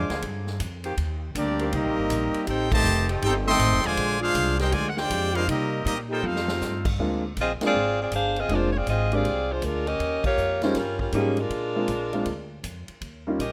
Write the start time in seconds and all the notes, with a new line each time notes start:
Already playing: F3 G#3 D4 C5 F5 G#5 D6
0.09 D2 D3 A#3 C4 G#4, snare, ride
0.22 G2, kick, ride
0.47 snare
0.60 F2, kick, hi-hat pedal, ride
0.84 D#3 A#3 C4 G4, ride
0.97 D#2, kick, ride
1.35 D2 G3 A#3 C4 D4 G4 A#4 D5, kick, hi-hat pedal, ride
1.59 D#3 A#3 C4 G4, ride
1.72 C2 G3 A#3 C4 D#4 G4 A#4 D#5, kick, ride
1.85 A#1
1.98 G1
2.10 A#1, kick, hi-hat pedal, ride
2.34 muted upright bass stroke, ride
2.47 A1 C4 D#4 G4 A4 C5 G5, kick, ride
2.72 C3 D#3 A3 G4 C5 D#5 A5, kick, crash
2.83 F1, hi-hat pedal
3.09 F3 A3 D#4 G4, ride
3.22 G1 C4 D#4 G4 A4 C5 G5, kick, ride
3.45 D#3 A3 C4 A4 D#5 G5 C6
3.59 A1, kick, hi-hat pedal, ride
3.71 F1
3.83 D#1 D3 F3 G#3 F4 C5 D5 G#5, ride
3.97 A#1, kick, ride
4.20 G#3 D4 F4 G#4 C5 F5
4.35 C2, kick, hi-hat pedal, ride
4.59 G#3 C4 D4 D#4 G4 G#4 A#4 C5 G5, snare, ride
4.72 D2 D3 F3 G#3 F4 C5 D5 G#5, kick, ride
4.89 F#5
4.97 G#3 D4 F4 G4 C5 D5 G5, snare
5.10 F2, kick, hi-hat pedal, ride
5.34 G3 G#3 C4 D4 D#4 F4 G#4 A#4 C5 F5, ride
5.48 C3 G3 A#3 C4 D#4 G4 A#4 D#5, kick, ride
5.84 A#2 G3 A#3 C4 D#4 G4 A#4 D#5, kick, hi-hat pedal, ride
6.09 G3 A#3 D#4 F4 G4 A4 A#4 G5
6.13 D#4 C5
6.22 F2 A3 C4 D#4 F4 A4 C5, high tom
6.26 F5
6.36 snare
6.48 snare
6.61 G2, snare, hi-hat pedal
6.85 kick, crash
6.98 D2 G#3 A#3 C4 D4 F4, kick
7.36 A#1 D#5, kick, hi-hat pedal, ride
7.41 C4 F4 G#4
7.61 G#3 A#3 C4 D4 F4, muted upright bass stroke, snare, ride
7.65 C4 F4 G#4 D5
7.74 G#1
8.02 C4 F4 G#4 D5
8.12 G1 D4 G#4 C5 F5, kick, hi-hat pedal, ride
8.36 C4 F4 G#4 D#5, ride
8.49 F1 G#3 A#3 C4 D4 F4, kick, ride
8.53 G#3 D4 F4 C5
8.72 C#5
8.77 C4 F4 G#4 D5
8.87 G#1 C4 F4 G#4 D#5, kick, hi-hat pedal, ride
9.12 G#3 A#3 C4 D4 F4 G4 G#4 D5, ride
9.24 C2, kick, ride
9.51 G#3 D4 F4 C5
9.62 D2 G#3 D4 F4 A#4, kick, hi-hat pedal, ride
9.87 C#4 G4 A#4 D#5, ride
9.99 D#2, kick, ride
10.24 A#3 F4 G4 C#5, muted upright bass stroke, kick, crash
10.37 F2, hi-hat pedal
10.62 G3 G#3 A#3 C#4 D#4 F4 C5, snare, ride
10.75 G2 G3 C#4 F4 A#4, kick, snare, ride
10.99 G3 C#4 F4 A#4, kick
11.12 G#2 F3 G3 A#3 C#4 D#4 G4 G#4, kick, hi-hat pedal, ride
11.37 G#3 D4 F4 A#4, ride
11.50 A#2, kick, ride
11.76 G#3 A#3 C4 D4 F4
11.88 A#1, kick, hi-hat pedal, ride
12.13 G#3 A#3 C4 D4 F4, ride
12.25 D2, kick, ride
12.63 F2, kick, hi-hat pedal, ride
12.88 muted upright bass stroke, ride
13.01 D#2, kick, ride
13.27 G3 A#3 C#4 D#4 F4
13.39 A#1 C#4 G4 A#4 D#5, kick, hi-hat pedal, ride